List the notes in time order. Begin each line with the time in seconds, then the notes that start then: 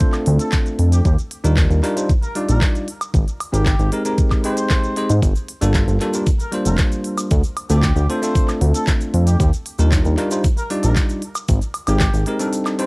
Already playing: A3 C4 D4 F4 A4 C5
0.00 kick, closed hi-hat, shaker
0.13 clap, closed hi-hat, high woodblock, shaker
0.26 D2, open hi-hat
0.39 A4, closed hi-hat, shaker
0.52 kick, clap, closed hi-hat, shaker
0.66 closed hi-hat, shaker
0.79 F2, open hi-hat
0.92 G4, closed hi-hat, shaker
1.05 D#2 G4, kick, closed hi-hat, shaker
1.18 closed hi-hat, shaker
1.31 open hi-hat
1.44 D#2 G3 D4 D#4 F4 A#4, closed hi-hat, shaker
1.57 kick, clap, closed hi-hat, shaker
1.70 D#2, closed hi-hat, shaker
1.83 G3 D4 D#4 F4 A#4, clap, open hi-hat
1.96 G3 D4 D#4 F4 C5, closed hi-hat, shaker
2.09 kick, closed hi-hat, shaker
2.22 A#4, closed hi-hat, shaker
2.35 G3 D4 D#4 F4 D5, open hi-hat
2.49 A#1 A#4, closed hi-hat, shaker
2.61 kick, clap, closed hi-hat, shaker
2.75 closed hi-hat, shaker
2.88 open hi-hat
3.01 closed hi-hat, high woodblock, shaker
3.14 G#1, kick, closed hi-hat, shaker
3.28 closed hi-hat, shaker
3.40 open hi-hat, high woodblock
3.52 G#1 G#3 C4 D#4 G4 A#4, closed hi-hat, shaker
3.66 kick, clap, closed hi-hat, shaker
3.79 G#1, closed hi-hat, shaker
3.92 G#3 C4 D#4 G4 A#4, open hi-hat
4.05 G#3 C4 D#4 G4 A#4, closed hi-hat, shaker
4.18 kick, closed hi-hat, shaker
4.31 kick, clap, closed hi-hat, high woodblock, shaker
4.44 G#3 C4 D#4 G4 C5, open hi-hat
4.57 closed hi-hat, shaker
4.70 kick, clap, closed hi-hat, shaker
4.84 closed hi-hat, shaker
4.96 G#3 C4 D#4 G4 C5, open hi-hat
5.09 G#2, closed hi-hat, shaker
5.22 G1, kick, closed hi-hat, cabasa, shaker
5.35 closed hi-hat, cabasa, shaker
5.48 open hi-hat
5.61 G1 G3 A#3 D4 F4 A4, closed hi-hat, cabasa, shaker
5.74 kick, clap, closed hi-hat, cabasa, shaker
5.88 G1, closed hi-hat, cabasa, shaker
6.00 G3 A#3 D4 F4 A4, clap, open hi-hat
6.13 G3 A#3 D4 F4 A#4, closed hi-hat, cabasa, shaker
6.26 kick, closed hi-hat, cabasa, shaker
6.40 A#4, closed hi-hat, cabasa, shaker
6.52 G3 A#3 D4 F4 C5, open hi-hat
6.65 F1 A#4, closed hi-hat, cabasa, shaker
6.78 kick, clap, closed hi-hat, cabasa, shaker
6.92 closed hi-hat, cabasa, shaker
7.04 open hi-hat
7.18 closed hi-hat, cabasa, high woodblock, shaker
7.31 D2, kick, closed hi-hat, cabasa, shaker
7.43 closed hi-hat, cabasa, shaker
7.57 open hi-hat, high woodblock
7.70 D2 A3 C4 D4 F4 G4 A4, closed hi-hat, cabasa, shaker
7.83 kick, clap, closed hi-hat, cabasa, shaker
7.96 D2, closed hi-hat, cabasa, shaker
8.09 A3 C4 D4 F4 A4 C5, open hi-hat
8.22 A3 C4 D4 F4 A4, closed hi-hat, cabasa, shaker
8.35 kick, closed hi-hat, cabasa, shaker
8.48 clap, closed hi-hat, cabasa, high woodblock, shaker
8.61 D2, open hi-hat
8.74 A4, closed hi-hat, cabasa, shaker
8.87 kick, clap, closed hi-hat, cabasa, shaker
9.01 closed hi-hat, cabasa, shaker
9.14 F2, open hi-hat
9.27 G4, closed hi-hat, cabasa, shaker
9.40 D#2 G4, kick, closed hi-hat, cabasa, shaker
9.53 closed hi-hat, cabasa, shaker
9.66 open hi-hat
9.78 D#2 G3 D4 D#4 F4 A#4, closed hi-hat, cabasa, shaker
9.92 kick, clap, closed hi-hat, cabasa, shaker
10.05 D#2, closed hi-hat, cabasa, shaker
10.17 G3 D4 D#4 F4 A#4, clap, open hi-hat
10.31 G3 D4 D#4 F4 C5, closed hi-hat, cabasa, shaker
10.44 kick, closed hi-hat, cabasa, shaker
10.57 A#4, closed hi-hat, cabasa, shaker
10.70 G3 D4 D#4 F4 D5, open hi-hat
10.83 A#1 A#4, closed hi-hat, cabasa, shaker
10.96 kick, clap, closed hi-hat, cabasa, shaker
11.09 closed hi-hat, cabasa, shaker
11.22 open hi-hat
11.35 closed hi-hat, cabasa, high woodblock, shaker
11.48 G#1, kick, closed hi-hat, cabasa, shaker
11.61 closed hi-hat, cabasa, shaker
11.74 open hi-hat, high woodblock
11.87 G#1 G#3 C4 D#4 G4 A#4, closed hi-hat, cabasa, high woodblock, shaker
12.00 kick, clap, closed hi-hat, cabasa, shaker
12.14 G#1, closed hi-hat, cabasa, shaker
12.26 G#3 C4 D#4 G4 A#4, open hi-hat
12.39 G3 C4 D4 D#4 A4 A#4, closed hi-hat, cabasa, shaker
12.53 closed hi-hat, cabasa, shaker
12.65 clap, closed hi-hat, cabasa, high woodblock, shaker
12.79 G3 C4 D4 D#4 C5, open hi-hat